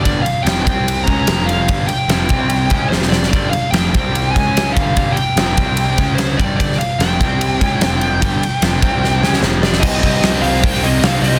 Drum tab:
CC |----------------|----------------|----------------|----------------|
RD |x-x-x-x-x-x-x-x-|x-x-x-x-x-x-----|x-x-x-x-x-x-x-x-|x-x-x-x-x-x-x-x-|
HH |----------------|----------------|----------------|----------------|
SD |----o-------o---|----o-------oooo|----o-------o---|----o-------o---|
BD |o-----o---o-----|o-----o---o-----|o-----o---o---o-|o-----o---o---o-|

CC |----------------|----------------|x---------------|
RD |x-x-x-x-x-x-x-x-|x-x-x-x---------|----------------|
HH |----------------|----------------|--o-o-o-o-o-o-o-|
SD |-o--o-------o---|----o---o-ooo-oo|----o----o--o---|
BD |o-----o---o-----|o-----o---------|o-o-----o-------|